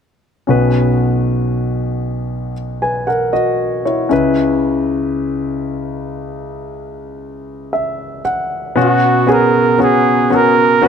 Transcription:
0.47 grand piano B1 B2 C#4 F#4 B4
2.82 grand piano B4 G#5
3.07 grand piano A#4 F#5
3.33 grand piano F#4 D#5
3.85 grand piano E4 C#5
4.09 grand piano C#2 C#3 C#4 E4 B4
7.73 grand piano E5
8.25 grand piano F#5
8.76 grand piano B2 B3 C#4 F#4
8.80 flugelhorn F#4
9.27 grand piano B3 C#4 G#4
9.31 flugelhorn A#4
9.79 grand piano B3 C#4 F#4
9.83 flugelhorn G#4
10.30 grand piano B3 C#4 F#4
10.35 flugelhorn A#4
10.82 grand piano B3 C#4 F#4

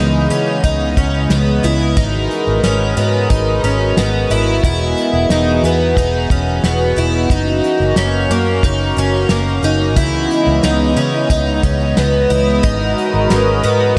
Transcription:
Already playing: fingered electric bass C#2, analog synth pad C#3 E3 G#3 B3 D#5, twelve-string acoustic guitar D#4
0.30 fingered electric bass C#3, twelve-string acoustic guitar C#4, closed hi-hat
0.64 fingered electric bass C#2, twelve-string acoustic guitar D#4, kick, closed hi-hat
0.97 fingered electric bass C#2, twelve-string acoustic guitar C#4, kick, closed hi-hat
1.30 fingered electric bass C#2, twelve-string acoustic guitar B3, snare, closed hi-hat
1.63 fingered electric bass C#2, twelve-string acoustic guitar E4, closed hi-hat
1.96 fingered electric bass G#1, analog synth pad G#3 F#4 A#4 B4, twelve-string acoustic guitar D#4, kick, closed hi-hat
2.31 closed hi-hat
2.47 fingered electric bass G#1
2.63 fingered electric bass G#1, twelve-string acoustic guitar C#4, snare, closed hi-hat
2.97 fingered electric bass G#2, twelve-string acoustic guitar B3, closed hi-hat
3.30 fingered electric bass G#1, twelve-string acoustic guitar D#4, kick, closed hi-hat
3.63 fingered electric bass G#1, twelve-string acoustic guitar C#4, closed hi-hat
3.97 fingered electric bass G#1, twelve-string acoustic guitar B3, snare, closed hi-hat
4.30 fingered electric bass G#1, twelve-string acoustic guitar E4, closed hi-hat
4.64 fingered electric bass E1, analog synth pad E3 B3 G#4, twelve-string acoustic guitar E4, kick, closed hi-hat
4.98 closed hi-hat
5.13 fingered electric bass E1
5.30 fingered electric bass E1, twelve-string acoustic guitar D#4, snare, closed hi-hat
5.63 fingered electric bass E2, twelve-string acoustic guitar B3, closed hi-hat
5.97 fingered electric bass E1, twelve-string acoustic guitar D#4, kick, closed hi-hat
6.30 fingered electric bass E1, twelve-string acoustic guitar C#4, kick, closed hi-hat
6.64 fingered electric bass E1, twelve-string acoustic guitar B3, snare, closed hi-hat
6.96 fingered electric bass E1, twelve-string acoustic guitar E4, closed hi-hat
7.30 fingered electric bass F#1, analog synth pad A#3 C#4, twelve-string acoustic guitar D#4, kick, closed hi-hat
7.64 closed hi-hat
7.80 fingered electric bass F#1
7.96 fingered electric bass F#1, twelve-string acoustic guitar C#4, snare, closed hi-hat
8.30 fingered electric bass F#2, twelve-string acoustic guitar A#3, closed hi-hat
8.63 fingered electric bass F#1, twelve-string acoustic guitar D#4, kick, closed hi-hat
8.96 fingered electric bass F#1, twelve-string acoustic guitar C#4, closed hi-hat
9.29 fingered electric bass F#1, twelve-string acoustic guitar A#3, snare, closed hi-hat
9.63 fingered electric bass F#1, twelve-string acoustic guitar D#4, closed hi-hat
9.95 fingered electric bass C#2, analog synth pad C#3 E3 G#3 B3 D#5, twelve-string acoustic guitar E4, kick, closed hi-hat
10.31 closed hi-hat
10.47 fingered electric bass C#2
10.63 fingered electric bass C#2, twelve-string acoustic guitar D#4, snare, closed hi-hat
10.97 fingered electric bass C#3, twelve-string acoustic guitar C#4, closed hi-hat
11.30 fingered electric bass C#2, twelve-string acoustic guitar D#4, kick, closed hi-hat
11.63 fingered electric bass C#2, twelve-string acoustic guitar C#4, kick, closed hi-hat
11.97 fingered electric bass C#2, twelve-string acoustic guitar B3, snare, closed hi-hat
12.30 fingered electric bass C#2, twelve-string acoustic guitar E4, closed hi-hat
12.63 fingered electric bass G#1, twelve-string acoustic guitar D#4, analog synth pad F#4 A#4 B4, kick, closed hi-hat
12.98 closed hi-hat
13.14 fingered electric bass G#1
13.30 fingered electric bass G#1, twelve-string acoustic guitar C#4, snare, closed hi-hat
13.64 fingered electric bass G#2, twelve-string acoustic guitar B3, closed hi-hat

